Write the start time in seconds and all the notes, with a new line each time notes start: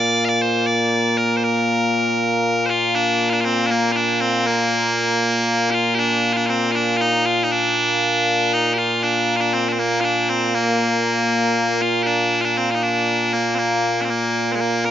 Already playing: A#2 A#3 D5
0.25 D5 F5
0.42 C5
0.66 D5
1.17 A#4
1.37 C5
1.44 A#4
2.66 C5
2.70 F4
2.95 D4
3.30 D4 F4
3.41 F4
3.45 C4
3.66 D4
3.71 A#3
3.92 F4
3.96 D4
4.21 C4
4.46 A#3
5.71 F4 G4
5.95 G4
5.99 D4
6.33 D4 F4
6.46 C4 F4
6.72 D4 F4
6.97 F4
7.01 D#4
7.26 F4
7.44 D#4
7.51 D4
8.53 D#4
8.74 G4
8.78 F4
9.03 D4
9.36 F4
9.41 D4
9.54 C4
9.69 C4 D4
9.79 A#3
10.01 D4 F4
10.29 C4
10.55 A#3
11.82 F4
12.03 D4 G4
12.41 D4 F4
12.58 C4
12.71 D#4 F4
12.83 D4
13.33 A#3
13.55 A#3 C4
14.01 C4 D4
14.10 A#3
14.52 G#3 C4
14.61 A#3
14.85 A#4